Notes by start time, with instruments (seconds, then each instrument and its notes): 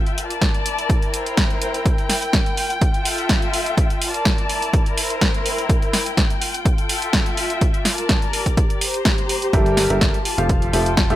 Already playing: string section F4 E5 G5
0.07 string section A#4, closed hi-hat
0.18 closed hi-hat
0.26 string section D5 A5
0.30 closed hi-hat
0.41 kick, snare, closed hi-hat
0.54 closed hi-hat
0.66 string section E4, closed hi-hat
0.79 closed hi-hat
0.90 kick, closed hi-hat
0.96 string section G5
1.02 closed hi-hat
1.14 closed hi-hat
1.20 string section C5
1.26 closed hi-hat
1.37 kick, snare, closed hi-hat
1.50 closed hi-hat
1.62 closed hi-hat
1.74 closed hi-hat
1.86 kick, closed hi-hat
1.98 closed hi-hat
2.09 snare, open hi-hat
2.22 closed hi-hat
2.33 kick, snare, closed hi-hat
2.46 closed hi-hat
2.57 string section F4, open hi-hat
2.70 closed hi-hat
2.81 kick, closed hi-hat
2.92 string section E5, closed hi-hat
3.00 string section A4
3.05 open hi-hat
3.18 closed hi-hat
3.29 kick, snare, closed hi-hat
3.42 closed hi-hat
3.54 open hi-hat
3.66 closed hi-hat
3.77 kick, closed hi-hat
3.90 closed hi-hat
4.02 open hi-hat
4.08 string section A#4 D5 A5
4.14 closed hi-hat
4.25 kick, snare, closed hi-hat
4.38 closed hi-hat
4.49 string section E4, open hi-hat
4.62 closed hi-hat
4.73 kick, closed hi-hat
4.83 string section G5, closed hi-hat
4.98 open hi-hat
5.04 string section C5
5.10 closed hi-hat
5.21 kick, snare, closed hi-hat
5.34 closed hi-hat
5.46 open hi-hat
5.58 closed hi-hat
5.69 kick, closed hi-hat
5.82 closed hi-hat
5.93 snare, open hi-hat
6.06 closed hi-hat
6.17 kick, snare, closed hi-hat
6.30 closed hi-hat
6.41 string section F4, open hi-hat
6.54 closed hi-hat
6.65 kick, closed hi-hat
6.75 string section A4, closed hi-hat
6.89 open hi-hat
6.96 string section E5
7.02 closed hi-hat
7.13 kick, snare, closed hi-hat
7.26 closed hi-hat
7.37 open hi-hat
7.50 closed hi-hat
7.61 kick, closed hi-hat
7.74 closed hi-hat
7.81 string section D5, snare
7.85 open hi-hat
7.94 string section A#4 A5, closed hi-hat
8.09 kick, snare, closed hi-hat
8.22 closed hi-hat
8.33 string section G4, open hi-hat
8.46 kick, closed hi-hat
8.57 kick, closed hi-hat
8.70 closed hi-hat
8.81 open hi-hat
8.88 string section C5 A#5
8.94 closed hi-hat
9.05 kick, snare, closed hi-hat
9.18 closed hi-hat
9.29 open hi-hat
9.42 closed hi-hat
9.53 analog synth bass G1, grand piano G3 G4 A4 A#4 E5, kick, closed hi-hat
9.66 closed hi-hat
9.71 string section A#4
9.77 snare, open hi-hat
9.86 analog synth bass G1, grand piano G3 G4 A4 A#4 E5, string section A5, closed hi-hat
10.01 kick, snare, closed hi-hat
10.14 closed hi-hat
10.25 string section F4, open hi-hat
10.38 analog synth bass F1, grand piano F3 F4 G4 A4 F5, closed hi-hat
10.49 string section A4, kick, closed hi-hat
10.62 closed hi-hat
10.73 analog synth bass F1, grand piano F3 F4 G4 A4 E5, open hi-hat
10.78 string section G5
10.86 closed hi-hat
10.97 kick, snare, closed hi-hat
11.10 analog synth bass F1, grand piano F3 F4 G4 A4 E5, closed hi-hat